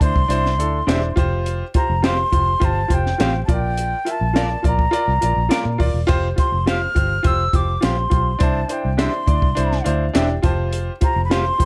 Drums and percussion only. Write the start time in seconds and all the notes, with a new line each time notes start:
0.01 kick, closed hi-hat
0.16 kick
0.30 closed hi-hat
0.46 snare
0.60 closed hi-hat
0.89 snare, closed hi-hat
1.17 kick, closed hi-hat
1.46 closed hi-hat
1.74 kick, closed hi-hat
2.04 snare, closed hi-hat
2.33 kick, closed hi-hat
2.62 kick, closed hi-hat
2.90 kick, closed hi-hat
3.06 snare
3.20 snare, closed hi-hat
3.49 kick, closed hi-hat
3.77 closed hi-hat
4.06 closed hi-hat
4.36 snare, closed hi-hat
4.64 kick, closed hi-hat
4.79 kick
4.93 closed hi-hat
5.22 closed hi-hat
5.51 snare, closed hi-hat
5.80 kick, open hi-hat
6.09 kick, closed hi-hat
6.38 kick, closed hi-hat
6.67 snare, closed hi-hat
6.96 kick, closed hi-hat
7.24 kick, closed hi-hat
7.53 kick, closed hi-hat
7.82 snare, closed hi-hat
8.11 kick, closed hi-hat
8.40 kick, closed hi-hat
8.69 closed hi-hat
8.99 snare, closed hi-hat
9.28 kick, closed hi-hat
9.42 kick
9.57 closed hi-hat
9.72 snare
9.86 closed hi-hat
10.15 snare, closed hi-hat
10.43 kick, closed hi-hat
10.73 closed hi-hat
11.01 kick, closed hi-hat
11.31 snare, closed hi-hat
11.60 kick, closed hi-hat